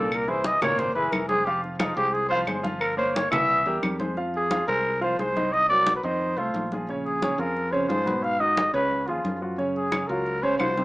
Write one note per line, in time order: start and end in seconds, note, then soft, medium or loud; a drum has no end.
0.00 0.56 C2 medium
0.00 0.22 A#2 medium
0.00 0.22 A#3 medium
0.00 0.16 A4 medium
0.00 0.22 A#4 medium
0.11 0.31 A#4 medium
0.11 high conga soft
0.11 claves medium
0.28 0.56 E3 medium
0.28 0.56 E4 medium
0.28 0.56 G#4 medium
0.28 0.48 C5 medium
0.28 high conga soft
0.44 0.62 D#5 loud
0.44 high conga medium
0.61 0.93 G#1 medium
0.61 0.89 A#2 medium
0.61 0.90 A#3 medium
0.61 0.90 A#4 medium
0.61 0.80 C#5 loud
0.61 high conga soft
0.61 low conga medium
0.61 claves medium
0.79 0.94 C5 medium
0.79 high conga soft
0.79 low conga medium
0.94 1.11 F#1 medium
0.94 1.24 E3 medium
0.94 1.24 E4 medium
0.94 1.24 G#4 medium
0.94 1.13 B4 medium
0.94 high conga soft
1.12 1.91 F1 medium
1.12 1.27 A#4 medium
1.12 high conga medium
1.12 claves medium
1.28 1.43 G#3 medium
1.28 1.47 G#4 loud
1.28 1.44 G#4 medium
1.28 1.44 C5 medium
1.28 high conga medium
1.45 1.74 F3 medium
1.45 1.74 F4 medium
1.45 1.63 G4 medium
1.45 1.74 F5 medium
1.45 high conga soft
1.64 1.80 C4 medium
1.64 high conga soft
1.79 1.94 F3 medium
1.79 1.96 D#4 medium
1.79 1.94 F4 medium
1.79 1.94 F5 medium
1.79 high conga medium
1.79 claves medium
1.96 2.44 C2 loud
1.96 2.25 G#3 medium
1.96 2.15 G4 loud
1.96 2.25 G#4 medium
1.96 2.25 C5 medium
1.96 high conga soft
2.13 2.28 G#4 medium
2.13 high conga soft
2.29 2.45 F3 loud
2.29 2.45 F4 medium
2.29 2.40 C5 loud
2.29 2.45 F5 medium
2.29 high conga soft
2.47 3.26 G1 loud
2.47 2.61 G#3 medium
2.47 2.61 G#4 medium
2.47 2.62 C5 medium
2.47 high conga medium
2.47 claves medium
2.63 2.91 F3 medium
2.63 2.92 F4 medium
2.63 2.92 F5 medium
2.63 high conga medium
2.81 2.97 A#4 medium
2.81 high conga soft
2.81 claves medium
2.97 3.25 A#3 medium
2.97 3.25 A#4 medium
2.97 3.16 C5 medium
2.97 3.26 C#5 medium
2.97 high conga soft
3.15 3.30 C#5 medium
3.15 high conga medium
3.31 3.64 C2 medium
3.31 3.59 E3 medium
3.31 3.60 E4 medium
3.31 3.79 E5 loud
3.31 3.60 E5 medium
3.31 high conga soft
3.31 low conga loud
3.31 claves medium
3.49 high conga soft
3.66 3.82 E2 medium
3.66 3.94 G3 medium
3.66 3.94 G4 medium
3.66 3.94 A#4 medium
3.66 high conga soft
3.83 4.62 F2 medium
3.83 high conga medium
3.83 claves medium
3.99 4.14 G#3 medium
3.99 4.14 G#4 medium
3.99 4.14 C5 medium
3.99 high conga medium
4.17 4.45 F3 medium
4.17 4.45 F4 medium
4.17 4.45 F5 medium
4.17 high conga soft
4.34 4.67 G#4 medium
4.34 high conga soft
4.51 4.65 F3 medium
4.51 4.65 F4 medium
4.51 4.65 F5 medium
4.51 high conga medium
4.68 5.15 C2 medium
4.68 4.95 G#3 medium
4.68 4.96 G#4 medium
4.68 4.99 A#4 medium
4.68 4.96 C5 medium
4.68 high conga soft
4.85 high conga soft
5.01 5.15 F3 medium
5.01 5.15 F4 medium
5.01 5.18 C5 medium
5.01 5.16 F5 medium
5.01 high conga soft
5.19 5.98 C2 medium
5.19 5.33 G#3 medium
5.19 5.33 G#4 medium
5.19 5.54 C5 medium
5.19 5.33 C5 medium
5.19 high conga medium
5.37 5.64 D#3 medium
5.37 5.64 D#4 medium
5.37 5.64 D#5 medium
5.37 high conga medium
5.53 5.68 D#5 loud
5.53 high conga soft
5.69 5.98 F#3 medium
5.69 5.98 F#4 medium
5.69 5.98 A#4 medium
5.69 5.94 D5 medium
5.69 high conga soft
5.87 high conga medium
5.96 6.05 B4 medium
6.03 6.35 F2 medium
6.03 6.32 D#3 medium
6.03 6.32 D#4 medium
6.03 6.39 C5 loud
6.03 6.32 D#5 medium
6.03 high conga soft
6.21 high conga soft
6.37 6.53 C2 medium
6.37 6.65 A3 medium
6.37 6.71 F4 medium
6.37 6.65 A4 medium
6.37 6.66 C5 medium
6.37 high conga soft
6.54 7.33 A#1 medium
6.54 high conga medium
6.72 6.86 F3 medium
6.72 6.86 F4 medium
6.72 6.86 G#4 medium
6.72 high conga medium
6.89 7.17 C#3 medium
6.89 7.17 C#4 medium
6.89 7.17 C#5 medium
6.89 high conga soft
7.06 7.41 G#4 medium
7.06 high conga soft
7.22 7.36 C#3 medium
7.22 7.36 C#4 medium
7.22 7.36 C#5 medium
7.22 high conga medium
7.38 7.86 F2 medium
7.38 7.66 F3 medium
7.38 7.67 F4 medium
7.38 7.67 G#4 medium
7.38 7.73 A#4 medium
7.38 high conga soft
7.57 high conga soft
7.72 7.86 C#3 medium
7.72 7.86 C#4 medium
7.72 7.88 C5 medium
7.72 7.86 C#5 medium
7.72 high conga soft
7.89 8.68 G#2 medium
7.89 8.03 F3 medium
7.89 8.03 F4 medium
7.89 8.04 G#4 medium
7.89 8.25 C5 medium
7.89 high conga medium
8.06 8.34 B2 medium
8.06 8.34 B3 medium
8.06 8.34 B4 medium
8.06 high conga medium
8.23 8.42 F5 medium
8.23 high conga soft
8.39 8.68 D#3 medium
8.39 8.68 D#4 medium
8.39 8.68 F#4 medium
8.39 8.73 D#5 loud
8.39 high conga soft
8.57 high conga medium
8.73 9.05 C#2 medium
8.73 9.01 C#3 medium
8.73 9.01 C#4 medium
8.73 9.09 B4 medium
8.73 9.02 C#5 medium
8.73 high conga soft
8.91 high conga soft
9.08 9.23 D#2 medium
9.08 9.36 F3 medium
9.08 9.42 F4 medium
9.08 9.36 F4 medium
9.08 9.36 G#4 medium
9.08 high conga soft
9.25 10.03 F#2 medium
9.25 high conga medium
9.41 9.55 F3 medium
9.41 9.56 F4 medium
9.41 9.56 F#4 medium
9.58 9.86 C#3 medium
9.58 9.86 C#4 medium
9.58 9.86 C#5 medium
9.58 high conga soft
9.76 10.09 G#4 medium
9.76 high conga soft
9.91 10.06 C#3 medium
9.91 10.06 C#4 medium
9.91 10.06 C#5 medium
9.91 high conga medium
9.91 claves medium
10.07 10.56 C#2 medium
10.07 10.37 F#3 medium
10.07 10.37 F4 medium
10.07 10.37 F#4 medium
10.07 10.44 A#4 medium
10.07 high conga soft
10.26 high conga soft
10.43 10.57 C#3 medium
10.43 10.57 C#4 medium
10.43 10.57 C5 medium
10.43 10.57 C#5 medium
10.43 high conga soft
10.58 10.85 C2 medium
10.58 10.74 F3 medium
10.58 10.74 F4 medium
10.58 10.74 F#4 medium
10.58 10.85 C5 medium
10.58 high conga medium
10.58 claves medium
10.77 10.85 C3 medium
10.77 10.85 C4 medium
10.77 10.85 C5 medium
10.77 high conga medium